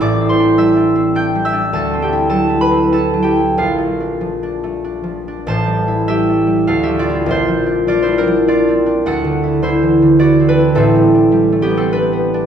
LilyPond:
<<
  \new Staff \with { instrumentName = "Harp" } { \time 3/4 \key a \minor \tempo 4 = 102 <c'' d'' e'' c''' d''' e'''>8 <c'' c'''>8 <e'' e'''>4 <g'' g'''>8 <e'' e'''>8 | <a' a''>8 <g' g''>8 <a' a''>8 <b' b''>8 <a' a''>8 <g' g''>8 | <f' f''>2. | <c'' a''>4 <g' e''>4 <a' f''>16 <g' e''>16 <f' d''>8 |
<f' c''>4 <f' d''>16 <e' c''>16 <d' bes'>8 <f' d''>4 | <a' fis''>4 <e' c''>4 <fis' d''>8 <d' b'>8 | <c' a'>4. <b g'>16 <c' a'>16 <d' b'>4 | }
  \new Staff \with { instrumentName = "Harp" } { \time 3/4 \key a \minor \tuplet 3/2 { <a,, a, g c' e'>8 c'8 d'8 g8 d'8 c'8 d'8 g8 d'8 } | \tuplet 3/2 { d,8 c'8 e'8 fis8 e'8 c'8 e'8 fis8 e'8 } | \tuplet 3/2 { bes,,8 a8 d'8 f8 d'8 a8 d'8 f8 d'8 } | \tuplet 3/2 { <a,, a,>8 g8 e'8 g8 a8 g8 d,8 f8 <c' e'>8 } |
\tuplet 3/2 { bes,,8 f8 d'8 f8 g8 f8 d'8 c'8 d'8 } | \tuplet 3/2 { d,8 d8 e'8 d8 e8 d8 e'8 c'8 e'8 } | \tuplet 3/2 { <a,, a,>8 g8 d'8 g8 a8 g8~ g8 b8 d'8 } | }
>>